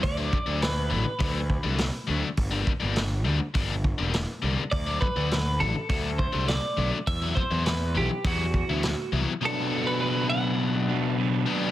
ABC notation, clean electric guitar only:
X:1
M:4/4
L:1/16
Q:1/4=102
K:Dmix
V:1 name="Clean electric guitar"
d4 B8- B2 z2 | z16 | d2 B4 A2 A2 c2 d3 z | e2 c2 B2 G2 F6 z2 |
A3 B B2 f6 z4 |]